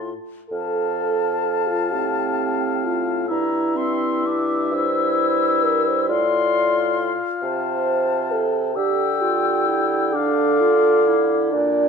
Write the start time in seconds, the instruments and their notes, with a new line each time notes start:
Already playing: bassoon A2, french horn F4, oboe A5, flute C6
0.50 bassoon F2, french horn A4, oboe F5, flute A5
1.68 french horn F4
1.91 bassoon A2, clarinet C4, french horn G4
2.84 french horn F4
3.27 bassoon G2, clarinet E4, french horn E4, oboe E5, flute A#5
3.76 clarinet C4, flute C6
4.26 clarinet D4, flute D6
4.73 clarinet E4, french horn C5, flute E6
5.63 french horn A#4
5.87 french horn C5
6.08 bassoon A2, clarinet F4, french horn D5, oboe F5, flute C6
7.43 bassoon C3, french horn C5, flute A5
8.32 french horn A4
8.76 bassoon D3, clarinet G4, french horn G4, oboe G5, flute E6
9.21 clarinet F4
9.66 clarinet E4
10.13 clarinet D4, french horn A4, oboe F5, flute D6
10.61 clarinet F4
11.07 clarinet E4
11.53 bassoon A#2, clarinet D4, french horn D5